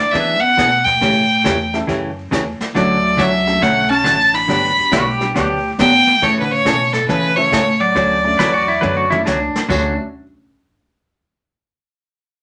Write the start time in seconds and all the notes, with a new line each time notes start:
Already playing: D3 B3 E4 G#4 B4 D5
0.11 C#3 E3 B3 E5, brush sweep, kick, snare
0.15 D4 G#4
0.40 B3 F#5
0.57 B2 E3 B3 D4 G#4, kick, snare, hi-hat pedal
0.84 A3 G5, kick, snare
1.01 A2 C#3 E3 A3 C#4 G4, brush sweep, kick, snare
1.44 E2 C#3 E3 A3 C#4 G4, kick, snare, hi-hat pedal
1.73 A3 C#4 E4 G4 A4, snare
1.87 F#2 C#3 E3 A3 C#4 G4, brush sweep, kick, snare
2.31 E2 C#3 E3 A3 C#4 G4, kick, snare, hi-hat pedal
2.59 muted upright bass stroke, snare
2.75 D2 D3 F#3 A3 C#4 D4 F#4 A4 D5, brush sweep, kick, snare
3.17 C#2 D3 F#3 A3 C#4 F#4 E5, kick, snare, hi-hat pedal
3.47 A3 C#4 D4 F#4 A4, snare
3.61 B1 D3 F#3 A3 C#4 F#4 F#5, brush sweep, kick, snare
3.90 C#4 A5
4.04 A1 D3 F#3 A3 C#4 F#4, kick, snare, hi-hat pedal
4.34 D4 B5, snare
4.48 G1 D3 F#3 G3 B3 D4 F#4 G4, brush sweep, kick, snare
4.77 muted upright bass stroke
4.91 B1 D3 F#3 B3 D4 F#4 G4, kick, snare, hi-hat pedal
5.07 G4
5.20 G3 B3 D4 F#4 G4, snare
5.35 D2 D3 F#3 B3 D4 G4, brush sweep, kick, snare
5.79 F#2 D3 F#3 B3 D4 G4 G5, kick, snare, hi-hat pedal
6.07 muted upright bass stroke, snare
6.22 A2 C#3 E3 A3 C#4 A4 C#5, brush sweep, kick, snare
6.39 D3 B4
6.51 C#3 C#5
6.65 B2 C#3 E3 A3 C#4 A4, kick, snare, hi-hat pedal
6.93 A2 A4, snare
7.08 C#3 E3 A3 C#4 A4 B4, brush sweep, kick, snare
7.37 C#3 E3 A3 C#4 E4 A4 C#5
7.52 A2 C#3 E3 A3 C#4 A4, kick, snare, hi-hat pedal
7.80 F#3 D5
7.95 D2 D3 F#3 A3 C#4 F#4, brush sweep, kick, snare
8.24 F#3 A3 C#4 D4 F#4
8.39 E2 D3 F#3 A3 C#4 F#4 B4, kick, snare, hi-hat pedal
8.54 F#4
8.68 E4
8.81 F#2 D3 F#3 A3 C#4 F#4 B4, mid tom
8.97 F#4
9.10 F#3 A3 C#4 D4 E4 F#4, mid tom
9.25 C#2 D3 F#3 A3 C#4 D4 F#4, snare, hi-hat pedal
9.54 muted upright bass stroke, snare
9.69 D2 D3 F#3 A3 C#4 D4 F#4, kick, china